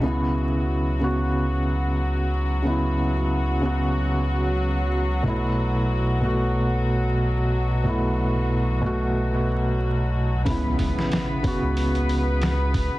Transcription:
0.01 C#2 C#3 F#3 B3 F#4
0.06 E4
0.99 C#3 B3
1.04 F#4
2.62 C#3 B3
2.67 E4
3.60 C#3 B3
3.65 F#4
5.23 B1 B2 A3
5.27 E4
6.21 B2 A3
6.25 F#4
7.84 B2 A3
7.88 E4
8.81 B2 A3
8.86 F#4
10.45 C#2 C#3 B3 B4, kick, open hi-hat, impact
10.49 E4
10.79 C#2, kick, open hi-hat
10.99 snare
11.12 snare, open hi-hat
11.43 C#3 B3, kick, open hi-hat
11.47 F#4
11.63 C#2
11.77 open hi-hat
11.95 closed hi-hat
12.09 open hi-hat
12.41 snare, open hi-hat
12.74 kick, open hi-hat

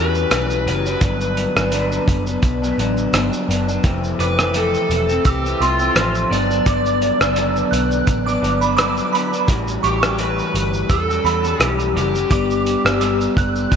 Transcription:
Already playing: E2 E3 G3 C#4 B4
0.00 F#4
0.15 shaker
0.31 B1 A2 E3 G3 C#4 F#4, cross-stick, closed hi-hat, shaker
0.50 shaker
0.66 F#1 E3 G3 C#4 F#4 B4, closed hi-hat, shaker
0.85 G3 C#4 F#4, shaker
1.01 G1 G2 D3 F#3 B3 D4, kick, closed hi-hat, shaker
1.21 shaker
1.37 closed hi-hat, shaker
1.56 G1 F#3 B3 D4, cross-stick, shaker
1.72 G2 D3 F#3 B3 D4, closed hi-hat, shaker
1.92 shaker
2.08 F#1, kick, closed hi-hat, shaker
2.27 F#3 B3 D4, shaker
2.42 B1, kick, closed hi-hat, shaker
2.62 F#3 B3 D4, shaker
2.78 A1 D3 F#3 B3 D4, closed hi-hat, shaker
2.97 shaker
3.13 G1 G2 D3 F#3 B3 D4, cross-stick, closed hi-hat, shaker
3.33 shaker
3.48 F#1 D3 F#3 B3 D4, closed hi-hat, shaker
3.68 F#3 B3 D4, shaker
3.83 F1 F2 C3 E3 A3 C4, kick, closed hi-hat, shaker
4.04 shaker
4.19 F1 B4 D6, closed hi-hat, shaker
4.38 E3 A3 C4, cross-stick, shaker
4.54 F2 C3 E3 A3 C4 A4, closed hi-hat, shaker
4.74 shaker
4.89 E1, closed hi-hat, shaker
5.09 E3 A3 C4, shaker
5.25 C2 G4 E6, kick, closed hi-hat, shaker
5.44 E3 A3 C4, shaker
5.60 C2 C3 E3 A3 C4 F4 C6, closed hi-hat, shaker
5.79 E3 A3 C4, shaker
5.96 A1 F2 C3 A3 C4, cross-stick, closed hi-hat, shaker
6.15 shaker
6.30 G1 D3 F#3 B3 D4 D5, closed hi-hat, shaker
6.50 F#3 B3 D4, shaker
6.66 G1 G2 D3 F#3 B3 D4 D6, kick, closed hi-hat, shaker
6.86 shaker
7.02 closed hi-hat, shaker
7.21 F#1 F#3 B3 D4 E6, cross-stick, shaker
7.36 D3 F#3 B3 D4, closed hi-hat, shaker
7.56 shaker
7.71 B1 F#6, closed hi-hat, shaker
7.91 shaker
8.07 A1, kick, closed hi-hat, shaker
8.26 F#3 B3 D4 D6, shaker
8.42 G1 D3 F#3 B3 D4, closed hi-hat, shaker
8.61 F#3 B3 D4 B5, shaker
8.77 G2 D3 F#3 B3 D4 D6, cross-stick, closed hi-hat, shaker
8.97 shaker
9.12 D3 F#3 B3 D4 B5, closed hi-hat, shaker
9.32 F#3 B3 D4, shaker
9.48 A1 A2 E3 G3 C#4 F#4, kick, closed hi-hat, shaker
9.68 shaker
9.83 A1 G4 C#6, closed hi-hat, shaker
10.02 G3 C#4 F#4, cross-stick, shaker
10.18 A2 E3 G3 C#4 F#4 B4, closed hi-hat, shaker
10.39 shaker
10.54 G1, closed hi-hat, shaker
10.74 shaker
10.89 E2 A4 E6, kick, closed hi-hat, shaker
11.08 G3 C#4 F#4, shaker
11.23 E2 E3 G3 C#4 F#4 B5, closed hi-hat, shaker
11.43 G3 C#4 F#4, shaker
11.58 B1 A2 E3 G3 C#4 F#4 G4, cross-stick, closed hi-hat, shaker
11.79 shaker
11.94 F#1 E3 G3 C#4 F#4 G4, closed hi-hat, shaker
12.14 G3 C#4 F#4, shaker
12.30 G1 G3 B3 D4 D6, kick, closed hi-hat, shaker
12.50 shaker
12.66 closed hi-hat, shaker
12.84 G1 B3 D4 F#4 E6, cross-stick, shaker
13.00 G3 B3 D4, closed hi-hat, shaker
13.21 shaker
13.37 F#1 F#6, kick, closed hi-hat, shaker
13.56 shaker
13.70 A1 A2 D3 G3 D4 E4 B4, kick, closed hi-hat, shaker

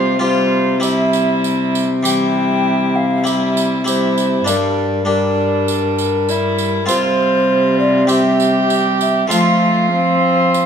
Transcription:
Already playing: C3 G3 F4 G4 C5
0.19 G3 F4 G4 C5
0.80 G3 E4 G4 E5, tambourine
1.13 tambourine
1.44 tambourine
1.75 tambourine
2.03 E3 G3 E4 G4 G5, tambourine
2.96 F5
3.24 G3 E4 G4 E5, tambourine
3.57 tambourine
3.85 G3 E4 G4 C5, tambourine
4.18 tambourine
4.45 G2 G3 D4 G4 A#4, tambourine
5.05 G3 D4 G4 A#4
5.68 tambourine
5.98 tambourine
6.29 E4, tambourine
6.58 tambourine
6.86 C3 G3 C4 F4 C5, tambourine
7.80 D5
8.07 G3 C4 G4 E5, tambourine
8.40 tambourine
8.70 tambourine
9.01 E5, tambourine
9.28 A3 C4 F4, tambourine
9.32 F3 F5
9.93 C4
10.54 tambourine

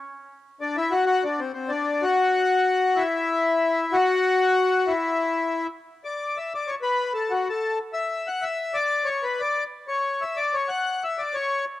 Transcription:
0.61 D4
0.77 E4
0.92 F#4
1.06 F#4
1.24 D4
1.39 C4
1.53 C4
1.69 D4
2.03 F#4
2.96 E4
3.93 F#4
4.88 E4
6.05 D5
6.37 E5
6.55 D5
6.68 C#5
6.82 B4
7.14 A4
7.31 F#4
7.49 A4
7.93 E5
8.28 F#5
8.42 E5
8.74 D5
9.05 C#5
9.23 B4
9.40 D5
9.88 C#5
10.21 E5
10.37 D5
10.54 C#5
10.69 F#5
11.04 E5
11.18 D5
11.34 C#5

